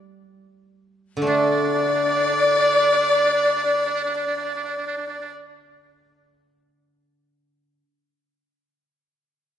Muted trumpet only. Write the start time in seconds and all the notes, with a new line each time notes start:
1.27 D4
1.38 D4
1.50 D4
1.63 D4
1.74 D4
1.84 D4
1.94 D4
2.05 D4
2.15 D4
2.26 D4
2.36 D4
2.46 D4
2.58 D4
2.70 D4
2.79 D4
2.90 D4
2.99 D4
3.11 D4
3.24 D4
3.34 D4
3.44 D4
3.54 D4
3.64 D4
3.74 D4
3.86 D4
3.94 D4
4.05 D4
4.15 D4
4.27 D4
4.36 D4
4.45 D4
4.55 D4
4.64 D4
4.77 D4
4.87 D4
4.97 D4
5.08 D4
5.20 D4